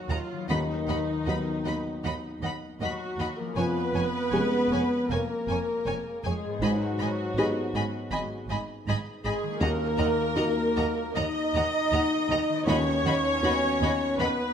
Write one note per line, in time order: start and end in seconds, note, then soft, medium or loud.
0.00 0.30 D#3 medium
0.00 0.35 F#3 soft
0.00 0.45 F#3 soft
0.00 0.45 A#3 soft
0.00 0.48 A#3 soft
0.00 0.44 D#4 soft
0.00 0.46 D#4 soft
0.09 0.17 D#2 medium
0.09 0.49 F#3 medium
0.09 0.49 F4 medium
0.09 0.18 D#5 soft
0.09 0.18 F#5 medium
0.09 0.18 A#5 medium
0.31 3.51 D#3 medium
0.36 3.53 F#3 soft
0.41 3.55 B3 soft
0.45 0.57 D#2 medium
0.45 3.57 D#4 soft
0.45 0.56 D#5 medium
0.45 0.57 F#5 medium
0.49 1.25 D#2 medium
0.49 2.42 D#3 medium
0.49 2.39 D#4 medium
0.49 0.58 B5 medium
0.88 0.96 D#2 medium
0.88 0.96 D#5 medium
0.88 0.96 F#5 medium
0.88 0.97 B5 soft
1.26 1.34 D#2 medium
1.26 1.35 D#2 medium
1.26 3.53 F#3 soft
1.26 3.53 B3 soft
1.26 3.53 D#4 soft
1.26 1.34 D#5 soft
1.26 1.34 F#5 soft
1.26 1.37 B5 medium
1.65 1.73 D#2 medium
1.65 1.73 D#5 soft
1.65 1.73 F#5 soft
1.65 1.75 B5 medium
2.04 2.12 D#2 medium
2.04 2.13 D#5 soft
2.04 2.12 F#5 medium
2.04 2.14 B5 medium
2.42 2.50 D#2 medium
2.42 2.51 D#2 medium
2.42 2.50 D#5 medium
2.42 2.51 F#5 medium
2.42 2.53 B5 medium
2.80 2.88 D#2 medium
2.80 2.89 D#2 medium
2.80 3.34 F#3 medium
2.80 3.34 F#4 medium
2.80 2.89 D#5 medium
2.80 2.89 F#5 medium
2.80 2.92 B5 medium
3.18 3.26 D#2 medium
3.18 3.27 D#5 medium
3.18 3.27 F#5 soft
3.18 3.28 B5 medium
3.37 6.56 F3 soft
3.37 3.57 A#3 medium
3.37 3.56 A#4 medium
3.44 7.34 G#3 soft
3.48 6.60 C#4 soft
3.53 3.64 F1 medium
3.53 3.64 F2 medium
3.53 6.57 G#4 soft
3.53 5.06 B4 loud
3.53 3.64 C#5 medium
3.53 3.64 G#5 medium
3.57 4.31 F2 medium
3.57 5.10 B3 medium
3.57 3.66 G#5 medium
3.94 4.02 F1 medium
3.94 4.02 F2 medium
3.94 4.03 C#5 medium
3.94 4.03 G#5 medium
3.94 4.04 G#5 soft
4.32 4.40 F1 medium
4.32 4.40 F2 medium
4.32 6.58 G#3 soft
4.32 6.58 C#4 soft
4.32 6.58 G#4 soft
4.32 4.40 C#5 soft
4.32 4.40 G#5 medium
4.32 4.43 G#5 soft
4.70 4.78 F1 medium
4.70 4.79 F2 medium
4.70 4.80 C#5 medium
4.70 4.80 G#5 medium
4.70 4.81 G#5 soft
5.10 5.18 F1 medium
5.10 5.18 F2 medium
5.10 6.24 A#3 medium
5.10 6.24 A#4 medium
5.10 5.20 C#5 soft
5.10 5.19 G#5 medium
5.10 5.20 G#5 medium
5.48 5.56 F1 medium
5.48 5.56 F2 medium
5.48 5.58 C#5 medium
5.48 5.56 G#5 soft
5.48 5.58 G#5 medium
5.86 5.95 F1 medium
5.86 5.94 F2 medium
5.86 5.95 C#5 medium
5.86 5.94 G#5 medium
5.86 5.95 G#5 medium
6.24 6.32 F1 medium
6.24 6.32 F2 medium
6.24 6.61 G#3 medium
6.24 6.61 G#4 medium
6.24 6.33 C#5 medium
6.24 6.32 G#5 medium
6.24 6.33 G#5 medium
6.45 9.55 G#2 medium
6.49 9.57 B3 soft
6.54 9.50 D#4 soft
6.58 6.69 G#1 medium
6.58 7.34 G#2 medium
6.58 6.70 G#2 medium
6.58 8.50 F#4 medium
6.58 9.62 G#4 soft
6.58 6.70 B5 medium
6.63 8.50 F#3 medium
6.63 6.71 D#5 medium
6.63 6.71 G#5 medium
6.99 7.07 G#1 medium
6.99 7.08 G#2 medium
6.99 7.09 D#5 medium
6.99 7.09 G#5 medium
6.99 7.07 B5 medium
7.37 7.45 G#1 medium
7.37 7.45 G#2 medium
7.37 9.57 B3 soft
7.37 9.58 D#4 soft
7.37 9.58 G#4 medium
7.37 7.46 D#5 medium
7.37 7.46 G#5 medium
7.37 7.46 B5 medium
7.74 7.82 G#1 medium
7.74 7.82 G#2 medium
7.74 7.83 D#5 medium
7.74 7.83 G#5 medium
7.74 7.83 B5 medium
8.11 8.20 G#1 medium
8.11 8.20 G#2 medium
8.11 8.20 D#5 medium
8.11 8.20 G#5 medium
8.11 8.19 B5 medium
8.49 8.57 G#1 medium
8.49 8.58 G#2 medium
8.49 8.58 D#5 medium
8.49 8.58 G#5 medium
8.49 8.59 B5 medium
8.87 8.95 G#1 medium
8.87 8.95 G#2 medium
8.87 8.96 D#5 medium
8.87 8.97 G#5 medium
8.87 8.96 B5 medium
9.23 9.33 G#1 medium
9.23 9.33 G#2 medium
9.23 9.59 G#3 medium
9.23 9.58 G#4 loud
9.23 9.34 D#5 medium
9.23 9.34 G#5 medium
9.23 9.32 B5 medium
9.42 12.48 D#3 medium
9.47 12.63 A#3 soft
9.52 12.57 D#4 soft
9.56 12.61 F#4 soft
9.56 11.16 A#4 loud
9.60 10.33 D#2 medium
9.60 9.69 D#2 medium
9.60 11.16 A#3 medium
9.60 9.70 D#5 medium
9.60 9.70 F#5 medium
9.60 9.68 A#5 medium
9.98 10.06 D#2 medium
9.98 10.07 D#2 medium
9.98 10.07 D#5 medium
9.98 10.07 F#5 medium
9.98 10.06 A#5 medium
10.36 10.44 D#2 medium
10.36 10.45 D#2 medium
10.36 12.63 A#3 soft
10.36 12.63 D#4 medium
10.36 12.64 F#4 medium
10.36 10.44 D#5 medium
10.36 10.44 F#5 medium
10.36 10.44 A#5 medium
10.76 10.84 D#2 medium
10.76 10.85 D#2 medium
10.76 10.84 D#5 medium
10.76 10.85 F#5 medium
10.76 10.85 A#5 medium
11.14 11.24 D#2 medium
11.14 11.25 D#2 medium
11.14 12.67 D#4 medium
11.14 12.66 D#5 loud
11.14 11.24 D#5 medium
11.14 11.23 F#5 medium
11.14 11.24 A#5 medium
11.54 11.62 D#2 medium
11.54 11.63 D#2 medium
11.54 11.64 D#5 medium
11.54 11.64 F#5 medium
11.54 11.62 A#5 medium
11.92 12.00 D#2 medium
11.92 12.01 D#5 medium
11.92 12.01 F#5 medium
11.92 12.00 A#5 medium
12.30 12.38 D#2 medium
12.30 12.38 D#5 medium
12.30 12.39 F#5 medium
12.30 12.39 A#5 medium
12.49 14.53 D#3 medium
12.54 14.53 B3 soft
12.58 14.53 D#4 medium
12.62 14.53 F#4 soft
12.62 14.16 C#5 loud
12.67 12.75 D#2 medium
12.67 13.40 D#2 medium
12.67 12.75 D#2 medium
12.67 14.16 C#4 loud
12.67 12.76 D#5 medium
12.67 12.75 F#5 medium
12.67 12.76 B5 medium
13.05 13.13 D#2 medium
13.05 13.14 D#5 medium
13.05 13.13 F#5 medium
13.05 13.14 B5 medium
13.43 13.51 D#2 medium
13.43 14.53 B3 soft
13.43 14.53 D#4 medium
13.43 14.53 F#4 medium
13.43 13.52 D#5 medium
13.43 13.52 F#5 medium
13.43 13.52 B5 medium
13.80 13.88 D#2 medium
13.80 13.89 D#2 medium
13.80 13.91 D#5 medium
13.80 13.91 F#5 medium
13.80 13.90 B5 medium
14.18 14.26 D#2 medium
14.18 14.27 D#2 medium
14.18 14.53 B3 medium
14.18 14.53 B4 loud
14.18 14.28 D#5 medium
14.18 14.28 F#5 medium
14.18 14.28 B5 medium